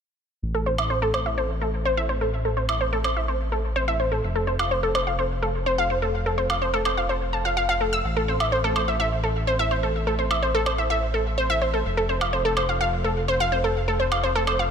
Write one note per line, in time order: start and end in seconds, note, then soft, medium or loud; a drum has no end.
0.42 4.21 A1 medium
0.55 0.59 A4 medium
0.66 0.74 C5 medium
0.78 0.86 E5 medium
0.78 high woodblock medium
0.90 0.98 C5 medium
1.02 1.07 A4 medium
1.14 1.22 C5 medium
1.14 high woodblock medium
1.26 1.34 E5 medium
1.38 1.46 C5 medium
1.61 1.66 A4 medium
1.85 1.97 C5 medium
1.97 2.02 E5 medium
2.09 2.17 C5 medium
2.21 2.29 A4 medium
2.45 2.50 A4 medium
2.57 2.65 C5 medium
2.69 2.76 E5 medium
2.69 high woodblock medium
2.81 2.88 C5 medium
2.93 2.97 A4 medium
3.04 3.12 C5 medium
3.04 high woodblock medium
3.17 3.24 E5 medium
3.28 3.36 C5 medium
3.52 3.57 A4 medium
3.76 3.87 C5 medium
3.88 3.92 E5 loud
4.00 4.07 C5 medium
4.12 4.19 A4 medium
4.24 8.02 F1 medium
4.35 4.40 A4 medium
4.47 4.55 C5 medium
4.59 4.67 F5 medium
4.59 high woodblock medium
4.71 4.79 C5 medium
4.83 4.88 A4 medium
4.95 5.03 C5 medium
4.95 high woodblock medium
5.07 5.15 F5 medium
5.19 5.26 C5 medium
5.42 5.47 A4 medium
5.66 5.78 C5 medium
5.78 5.83 F5 loud
5.90 5.98 C5 medium
6.02 6.10 A4 medium
6.26 6.31 A4 medium
6.38 6.46 C5 medium
6.50 6.57 F5 medium
6.50 high woodblock medium
6.62 6.69 C5 medium
6.74 6.78 A4 medium
6.85 6.93 C5 medium
6.85 high woodblock medium
6.97 7.05 F5 medium
7.09 7.17 C5 medium
7.33 7.38 A5 medium
7.45 7.56 F5 medium
7.57 7.65 F5 medium
7.69 7.73 F5 loud
7.81 7.92 A4 medium
7.93 8.00 E6 medium
8.04 11.83 A1 medium
8.17 8.21 A4 medium
8.28 8.36 C5 medium
8.40 8.48 E5 medium
8.40 high woodblock medium
8.52 8.60 C5 medium
8.64 8.69 A4 medium
8.76 8.84 C5 medium
8.76 high woodblock medium
8.88 8.96 E5 medium
9.00 9.11 E5 medium
9.24 9.28 A4 medium
9.47 9.59 C5 medium
9.59 9.64 E5 loud
9.71 9.79 C5 medium
9.83 9.91 A4 medium
10.07 10.12 A4 medium
10.19 10.26 C5 medium
10.31 10.38 E5 medium
10.31 high woodblock medium
10.43 10.50 C5 medium
10.55 10.59 A4 loud
10.66 10.74 C5 medium
10.66 high woodblock medium
10.78 10.86 E5 medium
10.90 11.02 E5 medium
11.14 11.19 A4 medium
11.38 11.49 C5 medium
11.50 11.54 E5 loud
11.62 11.69 C5 medium
11.74 11.81 A4 medium
11.85 14.71 F1 medium
11.97 12.02 A4 medium
12.09 12.17 C5 medium
12.21 12.29 F5 medium
12.21 high woodblock medium
12.33 12.41 C5 medium
12.45 12.50 A4 medium
12.57 12.65 C5 medium
12.57 high woodblock medium
12.69 12.76 F5 medium
12.81 12.92 F5 medium
13.04 13.09 A4 medium
13.28 13.40 C5 medium
13.40 13.45 F5 loud
13.52 13.60 C5 medium
13.64 13.72 A4 medium
13.88 13.92 A4 medium
14.00 14.07 C5 medium
14.12 14.19 F5 medium
14.12 high woodblock medium
14.23 14.31 C5 medium
14.35 14.40 A4 medium
14.47 14.55 C5 medium
14.47 high woodblock medium
14.59 14.67 F5 medium